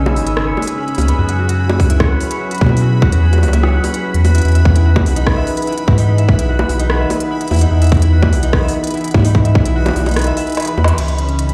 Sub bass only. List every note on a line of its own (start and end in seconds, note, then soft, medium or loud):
0.00 0.18 B1 medium
0.16 0.53 G#1 medium
0.98 1.13 C#2 medium
1.18 1.81 F#2 loud
1.80 2.16 C#2 medium
2.61 3.08 B2 medium
3.12 3.45 E2 medium
3.43 3.80 C#2 medium
4.14 4.41 E2 loud
4.45 5.08 E2 loud
5.06 5.43 B1 medium
5.88 6.35 G#2 loud
6.39 6.65 B1 medium
6.69 7.06 B1 medium
7.51 7.66 E2 medium
7.71 8.34 E2 loud
8.33 8.69 B1 medium
9.14 9.61 G#2 medium
9.65 9.92 B1 medium
9.96 10.33 B1 medium
10.78 10.93 E2 medium
10.98 11.54 C#2 medium